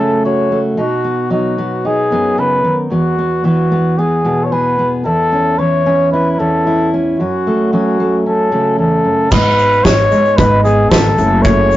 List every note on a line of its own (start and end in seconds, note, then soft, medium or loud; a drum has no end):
0.00 0.75 F#2 medium
0.00 0.75 C#3 medium
0.00 0.75 F#3 medium
0.00 0.51 A3 soft
0.00 0.75 C#4 soft
0.00 0.22 A4 medium
0.25 0.75 F#4 medium
0.25 0.62 C#5 medium
0.52 0.78 A3 soft
0.77 2.11 B2 medium
0.77 1.29 D#4 soft
0.77 1.29 F#4 medium
1.04 1.58 B3 soft
1.30 2.88 F#3 soft
1.30 1.84 D#4 soft
1.30 1.88 F#4 medium
1.58 2.11 B3 medium
1.85 2.88 D#4 medium
1.85 2.41 G#4 medium
2.11 2.88 F#2 medium
2.11 2.89 B3 medium
2.38 2.64 C#3 medium
2.38 2.79 B4 medium
2.64 2.91 D#3 medium
2.90 5.04 E2 medium
2.90 3.17 B3 soft
2.90 3.41 F#4 medium
3.18 3.44 B3 soft
3.44 5.57 E3 medium
3.44 3.70 B3 soft
3.44 4.00 F#4 medium
3.72 3.97 B3 medium
3.99 4.24 B3 medium
3.99 4.46 G#4 medium
4.25 5.05 B2 medium
4.25 4.78 B3 medium
4.44 4.54 C#5 medium
4.52 5.02 G#4 medium
4.52 4.92 B4 medium
4.79 5.02 B3 soft
5.05 6.38 E2 medium
5.05 5.58 E4 medium
5.05 5.60 A4 medium
5.32 5.86 C#4 soft
5.59 7.18 E3 medium
5.59 6.12 E4 medium
5.59 6.11 C#5 medium
5.86 6.39 C#4 medium
6.12 6.66 E4 medium
6.12 6.32 B4 medium
6.32 6.41 B4 medium
6.39 7.19 E2 medium
6.39 6.92 C#4 medium
6.39 6.92 A4 medium
6.67 7.19 E4 medium
6.94 7.16 C#4 soft
7.20 8.78 F#2 medium
7.20 7.72 C#4 soft
7.20 7.69 F#4 medium
7.47 7.99 A3 soft
7.73 9.29 F#3 medium
7.73 8.25 C#4 medium
7.73 8.22 F#4 medium
8.00 8.51 A3 medium
8.26 9.29 C#4 soft
8.26 8.76 A4 medium
8.52 9.28 C#3 medium
8.52 9.31 A3 soft
8.78 9.04 E2 soft
8.78 9.33 A4 medium
9.04 9.30 F#2 soft
9.31 9.77 G#1 medium
9.31 11.15 G#2 medium
9.31 10.64 B3 medium
9.31 9.84 D#4 medium
9.31 9.86 B4 loud
9.31 9.84 D#5 medium
9.31 kick loud
9.31 crash medium
9.31 shaker medium
9.58 shaker medium
9.72 shaker soft
9.84 10.08 G#1 medium
9.84 10.10 D#4 medium
9.84 10.39 C#5 medium
9.84 10.37 D#5 medium
9.84 kick medium
9.84 snare medium
9.84 shaker medium
10.11 11.15 G#3 medium
10.11 10.37 D#4 medium
10.11 shaker medium
10.25 shaker soft
10.37 10.84 G#1 medium
10.37 11.15 D#4 medium
10.37 10.63 B4 medium
10.37 10.64 B4 medium
10.37 kick loud
10.37 shaker medium
10.64 11.15 B3 medium
10.64 10.91 G#4 medium
10.64 10.91 D#5 medium
10.64 shaker medium
10.90 11.14 G#1 medium
10.90 11.14 D#3 medium
10.90 11.44 A4 medium
10.90 11.44 B4 medium
10.90 kick medium
10.90 snare loud
10.90 shaker medium
11.18 11.77 F#1 medium
11.18 11.77 F#2 medium
11.18 11.77 A3 medium
11.18 11.70 C#4 medium
11.18 11.77 E4 medium
11.18 shaker medium
11.42 11.77 C#5 loud
11.42 11.77 C#5 medium
11.42 kick loud
11.42 shaker medium
11.71 11.77 C#4 soft
11.71 shaker medium